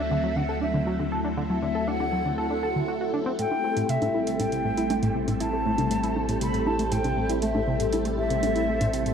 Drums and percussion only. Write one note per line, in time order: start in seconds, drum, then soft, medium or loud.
3.39 closed hi-hat medium
3.52 low bongo soft
3.77 closed hi-hat medium
3.89 closed hi-hat medium
4.02 closed hi-hat soft
4.02 low bongo medium
4.27 closed hi-hat medium
4.40 closed hi-hat medium
4.40 low bongo soft
4.52 closed hi-hat soft
4.77 closed hi-hat medium
4.90 closed hi-hat medium
4.90 low bongo medium
5.03 closed hi-hat soft
5.28 closed hi-hat medium
5.28 low bongo soft
5.40 closed hi-hat medium
5.78 closed hi-hat medium
5.78 low bongo medium
5.91 closed hi-hat medium
6.03 closed hi-hat soft
6.16 low bongo soft
6.29 closed hi-hat medium
6.41 closed hi-hat medium
6.54 closed hi-hat soft
6.67 low bongo medium
6.79 closed hi-hat medium
6.92 closed hi-hat medium
7.04 closed hi-hat soft
7.04 low bongo soft
7.29 closed hi-hat medium
7.42 closed hi-hat medium
7.55 low bongo medium
7.80 closed hi-hat medium
7.93 closed hi-hat medium
7.93 low bongo soft
8.05 closed hi-hat soft
8.30 closed hi-hat medium
8.43 closed hi-hat medium
8.43 low bongo medium
8.56 closed hi-hat soft
8.81 closed hi-hat medium
8.81 low bongo soft
8.93 closed hi-hat medium
9.06 closed hi-hat soft